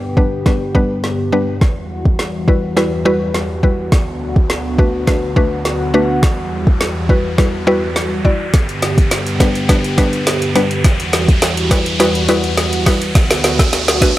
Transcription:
Already playing: G2 D3 B3 G4, riser
0.17 G3 B3 D4 B4, kick
0.46 G3 B3 D4 B4, kick, snare
0.75 G3 B3 D4 B4, kick
1.04 snare
1.32 G3 B3 D4 B4
1.61 E2 E3 G3 F#4, kick, snare
2.05 kick
2.19 snare
2.48 G3 E4 F#4 B4, kick
2.77 G3 E4 F#4 B4, snare
3.05 G3 E4 F#4 B4
3.34 snare
3.63 G3 E4 F#4 B4, kick
3.92 D2 D3 B3, kick, snare
4.36 kick
4.50 snare
4.78 A3 D4 F#4 B4, kick
5.07 A3 D4 F#4 B4, kick, snare
5.36 A3 D4 F#4 B4, kick
5.65 snare
5.94 A3 D4 F#4 B4
6.23 E2 E3 G3, kick, snare
6.67 kick
6.81 snare
7.09 G3 E4 F#4 B4, kick
7.38 G3 E4 F#4 B4, kick, snare
7.67 G3 E4 F#4 B4
7.96 snare
8.25 G3 E4 F#4 D5, kick
8.54 G2 D3 B3 G4, kick, snare, closed hi-hat
8.69 closed hi-hat
8.82 snare, closed hi-hat
8.98 kick, closed hi-hat
9.11 snare, closed hi-hat
9.27 closed hi-hat
9.40 G3 B3 D4 B4, kick, snare, closed hi-hat
9.55 closed hi-hat
9.69 G3 B3 D4 B4, kick, snare, closed hi-hat
9.84 closed hi-hat
9.98 G3 B3 D4 B4, kick, snare, closed hi-hat
10.13 closed hi-hat
10.27 snare, closed hi-hat
10.42 closed hi-hat
10.55 G3 B3 D4 B4, snare, closed hi-hat
10.71 closed hi-hat
10.84 E2 E3 G3 F#4, kick, snare, closed hi-hat
11.00 closed hi-hat
11.13 snare, closed hi-hat
11.28 kick, closed hi-hat
11.42 snare, closed hi-hat
11.57 closed hi-hat
11.71 G3 E4 F#4 B4, kick, snare, closed hi-hat
11.86 closed hi-hat
12.00 G3 E4 F#4 B4, snare, closed hi-hat
12.15 closed hi-hat
12.29 G3 E4 F#4 B4, snare, closed hi-hat
12.44 closed hi-hat
12.57 snare, closed hi-hat
12.73 closed hi-hat
12.86 G3 E4 F#4 B4, kick, snare, open hi-hat
13.02 closed hi-hat
13.15 D2 D3 B3, kick, snare, closed hi-hat
13.31 snare, closed hi-hat
13.44 snare, closed hi-hat
13.59 kick, snare, closed hi-hat
13.73 snare, closed hi-hat
13.88 snare, closed hi-hat
14.02 A3 D4 F#4 B4, kick, snare, closed hi-hat

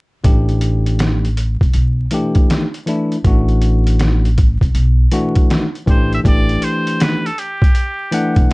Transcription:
0.24 A1 E3 A3 D4 G4, kick, closed hi-hat
0.49 closed hi-hat
0.61 closed hi-hat
0.86 closed hi-hat
0.99 snare, closed hi-hat
1.25 closed hi-hat
1.37 closed hi-hat
1.61 C2, kick, closed hi-hat
1.73 B1, closed hi-hat
2.11 E3 A3 D4 G4, closed hi-hat
2.35 kick, closed hi-hat
2.50 snare, closed hi-hat
2.74 closed hi-hat
2.86 E3 A3 D4 E4, closed hi-hat
3.12 closed hi-hat
3.25 A1 E3 A3 D4 F#4, kick, closed hi-hat
3.48 closed hi-hat
3.62 closed hi-hat
3.87 closed hi-hat
3.99 snare, closed hi-hat
4.25 closed hi-hat
4.38 kick, closed hi-hat
4.61 C2, kick, closed hi-hat
4.75 B1, closed hi-hat
5.12 E3 A3 D4 F#4, closed hi-hat
5.35 kick, closed hi-hat
5.50 snare, closed hi-hat
5.75 closed hi-hat
5.86 A1 E3 A3 D4 G4 C5, kick, closed hi-hat
6.13 E5, closed hi-hat
6.24 A1 E3 A3 D4 G4, kick, closed hi-hat
6.28 D5
6.49 closed hi-hat
6.62 C5, closed hi-hat
6.87 closed hi-hat
7.00 B4, snare, closed hi-hat
7.26 A4, closed hi-hat
7.38 G4, closed hi-hat
7.62 kick, closed hi-hat
7.75 closed hi-hat
8.11 E3 A3 D4 F#5, closed hi-hat
8.36 C2, kick, closed hi-hat
8.50 B1

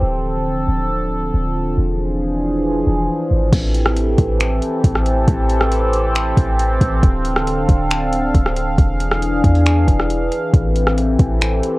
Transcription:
Already playing: C4
0.02 D1 D3 F3 A4
0.68 D1
1.34 D1
1.78 E1 E3 D4 G#4
2.87 E1
3.31 G#1
3.53 A1 E3 C4 G4 A4, kick, closed hi-hat, crash
3.75 closed hi-hat
3.86 cross-stick
3.97 closed hi-hat
4.18 A1, kick, closed hi-hat
4.40 finger snap, closed hi-hat
4.62 closed hi-hat
4.84 A1, kick, closed hi-hat
4.95 cross-stick
5.06 closed hi-hat
5.28 A1, kick, closed hi-hat
5.50 closed hi-hat
5.61 cross-stick
5.72 closed hi-hat
5.93 closed hi-hat
6.15 finger snap, closed hi-hat
6.37 A1, kick, closed hi-hat
6.59 closed hi-hat
6.81 A1, kick, closed hi-hat
7.03 D1 D3 A4 F5, kick, closed hi-hat
7.25 closed hi-hat
7.36 cross-stick
7.47 closed hi-hat
7.69 D1, kick, closed hi-hat
7.91 finger snap, closed hi-hat
8.13 closed hi-hat
8.35 D1, kick, closed hi-hat
8.46 cross-stick
8.57 closed hi-hat
8.78 E1 E3 D4 G#4, kick, closed hi-hat
9.00 closed hi-hat
9.11 cross-stick
9.22 closed hi-hat
9.44 E2, kick, closed hi-hat
9.55 closed hi-hat
9.66 finger snap, closed hi-hat
9.88 E1, kick, closed hi-hat
10.00 cross-stick
10.10 closed hi-hat
10.32 closed hi-hat
10.53 A1 C4 G4 A4, kick, closed hi-hat
10.76 closed hi-hat
10.87 cross-stick
10.98 closed hi-hat
11.19 A1, kick, closed hi-hat
11.41 finger snap, closed hi-hat
11.63 closed hi-hat

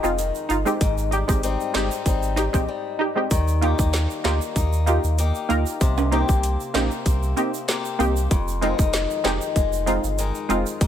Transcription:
Already playing: F2 D#3 G#3 D#4
0.03 F1 G#3 C4 D#4 F4, shaker
0.18 D#3, closed hi-hat, shaker
0.35 shaker
0.49 G1 D#4 F4, closed hi-hat, shaker
0.65 G#3 C4 D#4 G4, shaker
0.81 G#1 G#2, kick, closed hi-hat, shaker
0.98 shaker
1.11 G3 D#4 G4, closed hi-hat, shaker
1.28 G#1 G#3 C4 D#4 G4, kick, shaker
1.43 G3 C4 D#4, closed hi-hat, shaker
1.60 shaker
1.74 G1 G#3 C4 D#4 G4, snare, clap, closed hi-hat
1.91 shaker
2.06 G#1 G3 C4 D#4, kick, closed hi-hat, shaker
2.23 shaker
2.36 D#4 G4, snare, closed hi-hat, shaker
2.53 A#1 G#3 C4 D#4 G4, kick, shaker
2.68 G3
2.99 D#4 G4
3.16 G#3 C4 D#4 G4
3.31 D#2 D#3, kick, closed hi-hat, shaker
3.48 shaker
3.61 A#3 D#4 F4 G4, closed hi-hat
3.79 D#2, kick, shaker
3.93 snare, clap, closed hi-hat, shaker
4.10 shaker
4.24 D2 A#3 D#4 F4 G4, snare, clap, closed hi-hat
4.41 shaker
4.56 D#2 D#4, kick, closed hi-hat, shaker
4.73 shaker
4.86 A#3 D#4 F4 G4, closed hi-hat, shaker
5.04 D#2, shaker
5.18 A#3 D#4 G4, closed hi-hat, shaker
5.35 shaker
5.49 D2 A#3 D#4 F4 A#4, closed hi-hat, shaker
5.66 shaker
5.81 C2 C3, kick, closed hi-hat, shaker
5.98 high timbale, shaker
6.11 A#3 C4 D#4 G4, closed hi-hat
6.29 C2, kick, shaker
6.43 closed hi-hat, shaker
6.60 shaker
6.74 A#1 A#3 C4 D#4 G4, snare, clap, closed hi-hat, high timbale
6.91 shaker
7.06 C2 C4, kick, closed hi-hat, shaker
7.23 shaker
7.36 A#3 C4 D#4 G4, closed hi-hat, shaker
7.54 shaker
7.68 A#3 C4 G4, snare, clap, closed hi-hat, shaker
7.85 shaker
7.99 C2 A#3 C4 D#4 G4, closed hi-hat, shaker
8.16 shaker
8.31 F1 F2, kick, closed hi-hat, shaker
8.48 shaker
8.61 D#3 G#3 C4 D#4 F4, closed hi-hat
8.79 F1, kick, shaker
8.93 snare, clap, closed hi-hat, shaker
9.10 shaker
9.24 F1 D#3 G#3 C4 D#4 G4, snare, clap, closed hi-hat
9.41 shaker
9.56 F1 G#3, kick, closed hi-hat, shaker
9.73 shaker
9.86 G#3 C4 D#4 F4, closed hi-hat, shaker
10.04 G1, shaker
10.18 D#3 G#3 D#4, closed hi-hat, shaker
10.35 shaker
10.49 F1 G#3 C4 D#4 F4, closed hi-hat, shaker
10.66 shaker
10.81 G#1 G#2, kick, closed hi-hat, shaker

